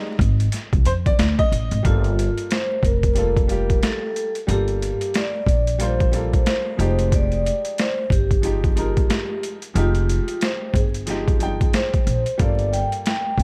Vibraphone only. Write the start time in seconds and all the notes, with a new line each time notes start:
1.86 F4
2.51 C5
2.85 A#4
3.84 A4
4.50 G4
5.16 D5
5.82 C5
6.48 C5
7.14 D5
7.80 C5
8.12 G4
9.77 F4
10.43 C5
10.75 G#4
11.75 C5
12.40 D5
12.73 G5
13.06 G5